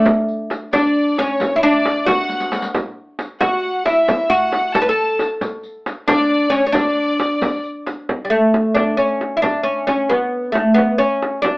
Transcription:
0.05 riq, frame drum
0.28 riq
0.50 riq, frame drum
0.73 D4 D5, riq, frame drum
1.16 C#4 C#5 D5, riq, frame drum
1.28 C#5
1.40 riq, frame drum
1.56 E4
1.62 D4 D5, riq
1.85 riq, frame drum
2.06 F#4 F#5, riq, frame drum
2.29 riq
2.40 riq
2.52 riq, frame drum
2.62 riq
2.74 riq, frame drum
3.19 riq, frame drum
3.40 F#4 F#5, riq, frame drum
3.85 E4 E5, riq, frame drum
4.08 riq, frame drum
4.30 F#4 F#5, riq
4.52 riq, frame drum
4.73 A4 A5, riq, frame drum
4.82 B4
4.88 A4 A5
5.19 riq, frame drum
5.41 riq, frame drum
5.63 riq
5.86 riq, frame drum
6.08 D4 D5, riq, frame drum
6.31 D5
6.50 C#4 C#5, riq
6.67 C#4
6.72 D4 D5, riq, frame drum
7.20 riq, frame drum
7.41 riq, frame drum
7.52 riq
7.63 riq
7.87 riq, frame drum
8.09 frame drum
8.25 G3
8.30 A3
8.54 frame drum
8.75 D4, frame drum
8.97 C#4
9.21 frame drum
9.37 E4
9.42 D4, frame drum
9.63 C#4
9.87 C#4, frame drum
10.09 B3, frame drum
10.52 A3, frame drum
10.74 B3, frame drum
10.98 C#4
11.22 frame drum
11.42 D4, frame drum

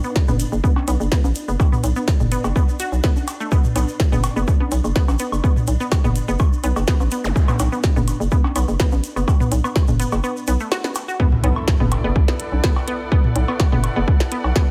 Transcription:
Already playing: D4
0.04 B3, shaker
0.16 kick, snare, shaker
0.28 F#1 B3, mid tom, high conga, shaker
0.40 closed hi-hat, shaker
0.52 F#1, shaker
0.64 B3, kick, shaker
0.76 cowbell, high conga
0.88 B1 B3, closed hi-hat, shaker
1.00 F#1, shaker
1.12 B3, kick, snare, shaker
1.24 A1, high conga, shaker
1.35 closed hi-hat, shaker
1.48 F#1 B3, shaker
1.60 kick, cowbell, shaker
1.72 B3, mid tom, shaker
1.84 B1, closed hi-hat, shaker
1.96 B3, shaker
2.08 kick, snare, shaker
2.20 F#1, mid tom, shaker
2.32 B3, closed hi-hat, shaker
2.44 F#1, cowbell, shaker
2.56 B3, kick, shaker
2.69 shaker
2.80 F#4, closed hi-hat, shaker
2.92 B1, shaker
3.04 B3, kick, snare, shaker
3.16 high conga, shaker
3.28 closed hi-hat, cowbell, shaker
3.40 A3, shaker
3.51 B3, kick, shaker
3.64 mid tom, shaker
3.76 B1 B3, closed hi-hat, high woodblock, shaker
3.88 shaker
4.00 kick, snare, shaker
4.12 F#1 B3, mid tom, high conga, shaker
4.24 closed hi-hat, cowbell, high woodblock, shaker
4.36 F#1 B3, shaker
4.48 kick, shaker
4.60 B3, high conga
4.72 B1, closed hi-hat, shaker
4.84 F#1, high woodblock, shaker
4.96 B3, kick, snare, shaker
5.08 A1, cowbell, high conga, shaker
5.19 B3, closed hi-hat, shaker
5.32 F#1, high woodblock, shaker
5.44 B3, kick, shaker
5.56 mid tom, shaker
5.67 B1, closed hi-hat, shaker
5.80 B3, shaker
5.92 kick, snare, cowbell, high woodblock, shaker
6.04 F#1 B3, mid tom, shaker
6.16 closed hi-hat, shaker
6.28 F#1 B3, shaker
6.39 kick, high woodblock, shaker
6.53 shaker
6.64 B1 B3, closed hi-hat, shaker
6.76 F#1, cowbell, shaker
6.88 B3, kick, snare, shaker
7.00 A1, high woodblock, shaker
7.11 B3, closed hi-hat, shaker
7.24 F#1, zap, shaker
7.36 kick, shaker
7.48 B3, mid tom, high woodblock, shaker
7.59 B1, closed hi-hat, cowbell, shaker
7.72 B3, shaker
7.84 kick, snare, shaker
7.96 F#1 B3, mid tom, high conga, shaker
8.08 closed hi-hat, high woodblock, shaker
8.20 F#1, shaker
8.31 B3, kick, shaker
8.44 cowbell, high conga
8.56 B1 B3, closed hi-hat, high woodblock, shaker
8.68 F#1, shaker
8.80 B3, kick, snare, shaker
8.92 A1, high conga, shaker
9.04 closed hi-hat, shaker
9.16 F#1 B3, high woodblock, shaker
9.28 kick, cowbell, shaker
9.40 B3, mid tom, shaker
9.52 B1, closed hi-hat, shaker
9.64 B3, high woodblock, shaker
9.76 kick, snare, shaker
9.88 F#1, mid tom, high conga, shaker
10.00 B3, closed hi-hat, shaker
10.12 F#1, cowbell, shaker
10.24 B3, high woodblock, shaker
10.37 shaker
10.47 B1 B3, closed hi-hat, shaker
10.60 A3, shaker
10.72 F#4, snare, high woodblock, shaker
10.84 B3, snare, high conga, shaker
10.95 closed hi-hat, cowbell, shaker
11.08 F#4, shaker
11.20 B3 E4, kick, impact
11.30 A4, mid tom
11.44 B1 B3, closed hi-hat
11.56 high woodblock
11.68 kick, snare
11.80 F#1 B3, mid tom, high conga
11.92 D5, closed hi-hat, cowbell, high woodblock
12.04 F#1 B3
12.16 kick
12.28 B3, snare
12.34 F#5
12.40 closed hi-hat
12.52 B1, high conga
12.64 B3, kick, snare
12.76 cowbell
12.88 B3, closed hi-hat
13.12 B3, kick
13.24 mid tom
13.36 B1, closed hi-hat
13.48 B3, high woodblock
13.60 kick, snare, cowbell
13.72 F#1 B3, mid tom, high conga
13.84 closed hi-hat, high woodblock
13.96 F#1 B3
14.08 kick
14.20 snare
14.32 B3, closed hi-hat
14.44 B1, cowbell
14.56 B3, kick, snare

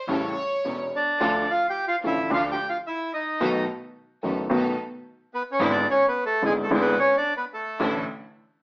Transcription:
0.07 A1 A2 C#3 G3 A3 C#4 E4 G4 A4 C#5
0.65 E1 E2 C#4 G4 A4
0.95 D4 D5
1.20 D2 D3 F3 A3 D4 F4 A4
1.51 F4 F5
1.70 G4 G5
1.88 F4 F5
2.04 A1 A2 D3 F3 A3 D4 E4 F4 A4 E5
2.30 D2 D3 F3 A3 D4 F4 A4 F5
2.34 F4
2.51 G4 G5
2.69 F4 F5
2.87 E4 E5
3.14 D#4 D#5
3.41 B1 B2 D#3 A3 B3 D#4 F#4 A4
4.23 F#1 F#2 D#3 A3 B3 D#4 F#4 A4
4.49 B1 B2 D#3 A3 B3 D#4 F#4 A4
5.34 B3 B4
5.52 C#4 C#5
5.59 G#1 G#2 D3 G#3 B3 D4 E4
5.70 D4 D5
5.90 C#4 C#5
6.08 B3 B4
6.26 A3 A4
6.42 G#1 G#2 D3 G#3 B3 D4 E4 G#4
6.63 A3 A4
6.69 G#1 G#2 D3 G#3 B3 D4 E4
6.81 B3 B4
6.99 C#4 C#5
7.17 D4 D5
7.37 B3 B4
7.54 A3 A4
7.79 A1 A2 D3 E3 A3 D4 E4

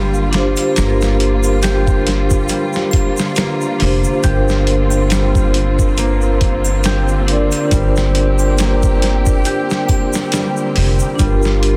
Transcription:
Already playing: G1 D3 G3 A#3 D4 F4 G4 A#4
0.14 shaker
0.31 D4 F4 G4, snare, closed hi-hat
0.36 C5
0.57 closed hi-hat, triangle, shaker
0.73 A#3 D4 F4, closed hi-hat, shaker
0.78 G1 G4, snare
0.82 A#4
1.01 snare, shaker
1.20 closed hi-hat
1.43 triangle, shaker
1.62 G4, snare, closed hi-hat, shaker
1.87 kick, shaker
2.07 snare, closed hi-hat
2.30 kick, shaker
2.49 G3, closed hi-hat, shaker
2.73 snare, shaker
2.91 kick, closed hi-hat, triangle
3.17 snare, shaker
3.36 A#3, snare, closed hi-hat, shaker
3.61 shaker
3.79 F1 D4 F4 G4, open hi-hat
3.83 C5
4.04 shaker
4.21 G1 C4 D4 F4 G4, kick, closed hi-hat, shaker
4.27 A#4 C5
4.48 snare, shaker
4.67 closed hi-hat
4.90 triangle, shaker
5.10 G3, snare, closed hi-hat, shaker
5.35 kick, shaker
5.54 closed hi-hat
5.79 kick, shaker
5.98 A#3, closed hi-hat, shaker
6.21 shaker
6.41 kick, closed hi-hat
6.65 triangle, shaker
6.83 G4, snare, closed hi-hat, shaker
7.08 shaker
7.27 D4 F4 A#4, closed hi-hat
7.32 D5
7.52 closed hi-hat, triangle, shaker
7.68 D4 F4 G4, kick, closed hi-hat
7.72 G1 G3 A#4, shaker
7.77 C5
7.96 snare, shaker
8.15 closed hi-hat
8.39 triangle, shaker
8.58 A#3, snare, closed hi-hat, shaker
8.82 kick, shaker
9.02 snare, closed hi-hat
9.26 kick, shaker
9.45 G4, closed hi-hat, shaker
9.70 snare, shaker
9.88 kick, closed hi-hat, triangle
10.13 snare, shaker
10.32 G3, snare, closed hi-hat, shaker
10.57 shaker
10.76 F1, open hi-hat
10.99 shaker
11.16 D3 G3 D4 F4, kick, closed hi-hat, shaker
11.20 G1 G4
11.25 A#4
11.42 snare, shaker
11.63 closed hi-hat

